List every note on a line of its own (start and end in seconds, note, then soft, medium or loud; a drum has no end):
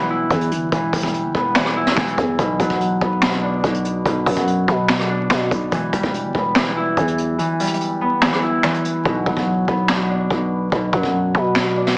0.00 0.28 E1 loud
0.00 0.30 E3 medium
0.00 0.92 G3 medium
0.00 1.34 B3 medium
0.00 1.23 D4 medium
0.10 1.76 E4 medium
0.30 0.53 E2 loud
0.30 0.71 E3 medium
0.30 kick medium
0.30 closed hi-hat medium
0.41 closed hi-hat medium
0.51 0.71 G1 loud
0.51 closed hi-hat medium
0.72 0.92 E1 loud
0.72 1.55 E3 loud
0.72 kick loud
0.72 closed hi-hat medium
0.93 1.26 E1 loud
0.93 2.44 G3 medium
0.93 kick loud
0.93 closed hi-hat medium
0.93 open hi-hat loud
1.00 kick medium
1.00 closed hi-hat medium
1.07 closed hi-hat loud
1.14 closed hi-hat medium
1.24 1.34 G1 loud
1.35 1.95 E1 loud
1.35 3.01 B3 medium
1.35 kick loud
1.55 1.96 E3 medium
1.55 finger snap loud
1.55 snare loud
1.55 closed hi-hat medium
1.66 cross-stick medium
1.76 4.38 E4 medium
1.87 snare medium
1.97 2.17 E1 loud
1.97 2.44 E3 medium
1.97 finger snap medium
1.97 kick medium
1.97 snare loud
1.97 closed hi-hat medium
2.08 closed hi-hat medium
2.18 2.38 E2 loud
2.18 kick loud
2.18 closed hi-hat medium
2.39 2.59 B1 loud
2.39 3.21 B2 loud
2.39 kick loud
2.39 closed hi-hat medium
2.60 3.00 B1 loud
2.60 4.25 F#3 medium
2.60 kick loud
2.60 closed hi-hat medium
2.70 kick loud
2.81 closed hi-hat medium
3.01 3.61 B1 loud
3.01 4.68 B3 medium
3.01 kick loud
3.22 3.63 B2 medium
3.22 finger snap loud
3.22 snare loud
3.22 closed hi-hat medium
3.43 5.09 D4 medium
3.64 4.04 B1 loud
3.64 4.04 B2 medium
3.64 kick medium
3.64 closed hi-hat medium
3.74 closed hi-hat medium
3.85 closed hi-hat medium
4.06 4.26 B1 loud
4.06 4.87 B2 medium
4.06 kick loud
4.06 closed hi-hat medium
4.26 4.66 F#2 loud
4.26 5.77 F#3 medium
4.26 kick loud
4.26 closed hi-hat medium
4.26 open hi-hat loud
4.37 kick medium
4.37 closed hi-hat loud
4.47 closed hi-hat medium
4.68 5.28 B2 loud
4.68 6.34 B3 medium
4.68 kick loud
4.88 5.29 B2 medium
4.88 finger snap loud
4.88 snare loud
4.88 closed hi-hat medium
4.99 cross-stick medium
5.10 7.90 D4 medium
5.30 5.77 B2 medium
5.30 5.51 B2 loud
5.30 finger snap medium
5.30 kick medium
5.30 snare loud
5.30 closed hi-hat medium
5.51 5.71 B1 loud
5.51 kick loud
5.51 closed hi-hat medium
5.72 5.92 E1 loud
5.72 6.55 E3 loud
5.72 kick loud
5.72 closed hi-hat medium
5.93 6.03 E1 loud
5.93 7.59 G3 medium
5.93 kick loud
5.93 closed hi-hat medium
6.03 6.26 E1 loud
6.03 kick loud
6.14 closed hi-hat medium
6.24 6.34 G1 loud
6.35 6.95 E1 loud
6.35 8.01 B3 medium
6.35 kick loud
6.55 6.96 E3 medium
6.55 finger snap medium
6.55 snare loud
6.55 closed hi-hat medium
6.77 8.43 E4 medium
6.97 7.39 E2 loud
6.97 7.37 E3 medium
6.97 kick medium
6.97 closed hi-hat medium
7.08 closed hi-hat medium
7.18 closed hi-hat medium
7.39 8.21 E3 medium
7.39 closed hi-hat medium
7.60 9.11 G3 medium
7.60 closed hi-hat medium
7.60 open hi-hat loud
7.67 closed hi-hat medium
7.74 closed hi-hat loud
7.81 closed hi-hat medium
8.01 9.68 B3 medium
8.22 8.63 E3 medium
8.22 finger snap loud
8.22 snare loud
8.22 closed hi-hat medium
8.33 cross-stick medium
8.43 11.04 E4 medium
8.63 9.11 E3 medium
8.63 finger snap medium
8.63 snare loud
8.63 closed hi-hat medium
8.74 closed hi-hat medium
8.85 closed hi-hat medium
9.05 9.25 B1 loud
9.05 9.88 B2 loud
9.05 kick loud
9.26 9.66 B1 loud
9.26 10.92 F#3 medium
9.26 kick loud
9.37 kick loud
9.68 10.28 B1 loud
9.68 11.34 B3 medium
9.68 kick loud
9.88 10.29 B2 medium
9.88 finger snap medium
9.88 snare loud
10.09 11.76 D4 medium
10.30 10.70 B1 loud
10.30 10.71 B2 medium
10.30 kick medium
10.72 10.92 B1 loud
10.72 11.54 B2 medium
10.72 kick loud
10.93 11.33 F#2 loud
10.93 11.98 F#3 medium
10.93 kick loud
11.03 kick medium
11.35 11.95 B2 loud
11.35 11.98 B3 medium
11.35 kick loud
11.55 11.96 B2 medium
11.55 finger snap loud
11.55 snare loud
11.76 11.98 D4 medium
11.87 snare medium